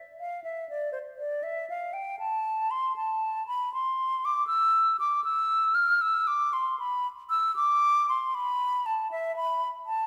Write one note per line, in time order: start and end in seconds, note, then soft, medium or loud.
0.20 0.43 F5 medium
0.44 0.68 E5 medium
0.69 0.92 D5 medium
0.92 0.98 C5 medium
1.18 1.45 D5 medium
1.43 1.69 E5 medium
1.70 1.95 F5 medium
1.93 2.19 G5 medium
2.19 2.72 A5 loud
2.71 2.95 C6 medium
2.96 3.46 A5 medium
3.47 3.73 B5 medium
3.74 4.27 C6 medium
4.25 4.47 D6 loud
4.47 4.97 E6 loud
5.00 5.24 D6 medium
5.24 5.76 E6 loud
5.75 6.03 F6 loud
6.01 6.29 E6 loud
6.27 6.55 D6 loud
6.53 6.78 C6 medium
6.79 7.07 B5 loud
7.30 7.54 E6 loud
7.56 8.07 D6 loud
8.09 8.36 C6 medium
8.35 8.87 B5 loud
8.86 9.11 A5 medium
9.12 9.36 E5 loud
9.36 9.68 B5 loud
9.86 10.07 A5 medium